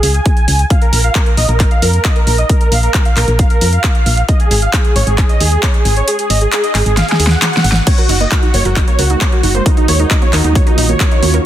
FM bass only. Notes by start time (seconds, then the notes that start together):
0.03 C#2
0.48 C#2
0.93 A#1
1.37 A#1
1.49 A#1
1.82 F2
2.27 A#1
2.72 A#1
3.17 A#1
3.28 A#1
3.61 F2
4.06 A#1
4.51 G#1
4.96 G#1
5.07 G#1
5.41 D#2
5.85 G#1
6.30 G#1
6.75 G#1
6.86 G#1
7.20 D#2
7.64 G#1
8.09 F#1
8.54 F#1
8.65 F#1
8.99 C#2
9.43 F#1
9.88 D#2
10.33 D#2
10.44 D#2
10.78 A#1
11.23 D#2